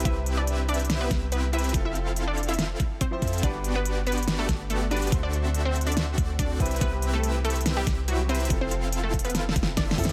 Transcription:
0.00 C3, closed hi-hat
0.05 C2 C4 E4 B4 E5, kick, closed hi-hat
0.26 closed hi-hat
0.37 D4 D5
0.47 closed hi-hat
0.69 D4 D5, closed hi-hat
0.74 closed hi-hat
0.80 closed hi-hat
0.85 closed hi-hat
0.90 snare, closed hi-hat
1.01 B3 B4
1.11 C2 C4 E4 G4 B4 E5, kick, snare, closed hi-hat
1.32 B3 B4, closed hi-hat
1.52 C3 C4 E4 B4 E5, closed hi-hat
1.59 closed hi-hat
1.64 closed hi-hat
1.69 F3, closed hi-hat
1.74 F1 C4 E4 F4 A4 F5, kick, closed hi-hat
1.85 E4 E5
1.95 closed hi-hat
2.16 closed hi-hat
2.27 D4 D5
2.38 closed hi-hat
2.43 closed hi-hat
2.48 E4 E5, closed hi-hat
2.54 closed hi-hat
2.59 snare, closed hi-hat
2.80 kick, closed hi-hat
3.01 C4 C5, kick, closed hi-hat
3.11 F3 C4 E4 C5
3.22 F2 C4 E4 F4 A4 E5, kick, closed hi-hat
3.28 closed hi-hat
3.33 closed hi-hat
3.38 G3, closed hi-hat
3.42 G1 B3 D4 F#4 G4 B4 D5 F#5, kick, closed hi-hat
3.64 closed hi-hat
3.75 B3 B4
3.85 closed hi-hat
4.07 B3 B4, closed hi-hat
4.12 closed hi-hat
4.18 closed hi-hat
4.23 closed hi-hat
4.28 snare, closed hi-hat
4.39 A3 A4
4.49 G1, kick, snare, closed hi-hat
4.70 A3 A4, closed hi-hat
4.90 G3 D4 F#4 B4 D5, closed hi-hat
4.97 closed hi-hat
5.02 closed hi-hat
5.07 D3, closed hi-hat
5.12 D2 D4 F#4 A4 C5 E5, kick, closed hi-hat
5.23 D4 D5
5.33 closed hi-hat
5.54 closed hi-hat
5.65 C4 C5
5.76 closed hi-hat
5.81 closed hi-hat
5.87 D4 D5, closed hi-hat
5.92 closed hi-hat
5.97 snare, closed hi-hat
6.18 D2 C4 D4 F#4 A4 D5, kick, closed hi-hat
6.39 D4 D5, kick, closed hi-hat
6.59 C2 C3 C4 E4 G4 B4 E5, kick, closed hi-hat
6.66 closed hi-hat
6.71 closed hi-hat
6.76 C3, closed hi-hat
6.81 C2 B3 C4 E4 B4, kick, closed hi-hat
7.02 closed hi-hat
7.13 A3 A4
7.23 closed hi-hat
7.45 A3 A4, closed hi-hat
7.50 closed hi-hat
7.56 closed hi-hat
7.61 closed hi-hat
7.66 snare, closed hi-hat
7.77 G3 G4
7.87 C2 C4 E4 G4 B4 E5, kick, snare, closed hi-hat
8.08 F#3 F#4, closed hi-hat
8.28 C3 C4 E4 B4 C5, closed hi-hat
8.35 closed hi-hat
8.40 closed hi-hat
8.45 F3, closed hi-hat
8.50 F1 C4 E4 F4 A4 F5, kick, closed hi-hat
8.61 C4 C5
8.71 closed hi-hat
8.92 closed hi-hat
9.03 A3 A4
9.14 kick, closed hi-hat
9.19 closed hi-hat
9.25 B3 B4, closed hi-hat
9.30 closed hi-hat
9.35 snare, closed hi-hat
9.49 snare
9.56 F1 C4 E4 F4 A4 E5, kick, closed hi-hat
9.63 snare
9.77 D4 D5, kick, snare, closed hi-hat
9.91 snare
9.97 F2 F3 C4 E4 F4 A4 E5, kick, open hi-hat
10.04 snare, closed hi-hat
10.09 closed hi-hat

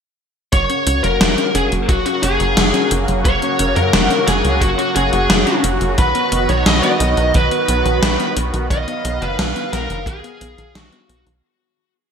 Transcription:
0.53 F#1 C#3 F#3 A#3 F#4 C#5, kick, closed hi-hat
0.70 C#4, closed hi-hat
0.87 C#2 C#4, closed hi-hat
1.04 F#1 F#3 A#4, closed hi-hat
1.21 F#1 F#3, snare, closed hi-hat
1.38 C#4, closed hi-hat
1.55 F#1 C#4 G#4, closed hi-hat
1.72 F#1 F#3, closed hi-hat
1.89 F#1 F#3 F#4, kick, closed hi-hat
2.06 C#4 F#4, closed hi-hat
2.23 F#1 C#4 G#4, closed hi-hat
2.40 F#1 F#3, closed hi-hat
2.57 F#1 F#3, snare, closed hi-hat
2.74 C#4, closed hi-hat
2.91 F#1 C#4, closed hi-hat
3.08 F#1 F#3, closed hi-hat
3.25 F#1 F#3 C#5, kick, closed hi-hat
3.42 C#4, closed hi-hat
3.59 F#1 C#4, closed hi-hat
3.76 F#2 F#3 A#4, closed hi-hat
3.93 F#1 F#3, snare, closed hi-hat
4.10 C#4, closed hi-hat
4.27 F#1 C#4 G#4, snare, closed hi-hat
4.44 C#2 F#3, closed hi-hat
4.61 F#1 F#3 F#4, kick, closed hi-hat
4.79 C#4 F#4, closed hi-hat
4.96 F#1 C#4 G#4, closed hi-hat
5.13 F#1 F#3, closed hi-hat
5.30 F#1 F#3, snare, closed hi-hat
5.47 C#4, closed hi-hat
5.64 F#1 C#4, closed hi-hat
5.81 F#1 F#3, closed hi-hat
5.98 B1 D#3 B3 B4, kick, closed hi-hat
6.15 B3, closed hi-hat
6.32 F#1 B3, closed hi-hat
6.49 B1 D#3 C#5, closed hi-hat
6.66 B1 D#3 D#5, snare, closed hi-hat
6.83 B3 D#5, closed hi-hat
7.00 B1 B3, closed hi-hat
7.17 B1 D#3, closed hi-hat
7.34 B1 D#3 B4, kick, closed hi-hat
7.51 B3, closed hi-hat
7.68 B1 B3, closed hi-hat
7.85 B1 D#3, closed hi-hat
8.02 B1 D#3, snare, closed hi-hat
8.20 B3, closed hi-hat
8.37 B1 B3, closed hi-hat
8.54 B1 D#3, closed hi-hat
8.70 B1 D#3 D#5 F5, kick, closed hi-hat
8.88 B3, closed hi-hat
9.05 B1 B3, closed hi-hat
9.22 F#1 D#3 B4, closed hi-hat
9.39 B1 D#3, snare, closed hi-hat
9.56 B3, closed hi-hat
9.73 B1 B3 A#4, snare, closed hi-hat
9.90 F#1 D#3, closed hi-hat
10.06 B1 D#3 G#4, kick, closed hi-hat
10.24 B3, closed hi-hat
10.41 B1 B3, closed hi-hat
10.58 B1 D#3, closed hi-hat
10.75 B1 D#3 F#4, snare, closed hi-hat
10.92 B3, closed hi-hat
11.09 B1 B3, closed hi-hat
11.26 B1 D#3, closed hi-hat

